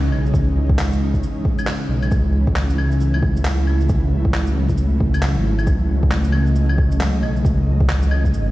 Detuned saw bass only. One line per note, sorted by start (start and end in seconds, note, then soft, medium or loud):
0.00 0.11 C#2 medium
0.12 0.33 B1 medium
0.34 1.22 C#2 medium
1.89 2.10 B1 medium
2.12 3.88 C#2 medium
3.89 4.99 C#2 loud
5.01 5.35 C#2 medium
5.36 5.66 G#1 loud
5.67 6.90 C#2 loud
6.91 7.21 C#2 medium
7.22 7.43 B1 medium
7.45 8.33 C#2 medium
8.33 8.51 G#1 medium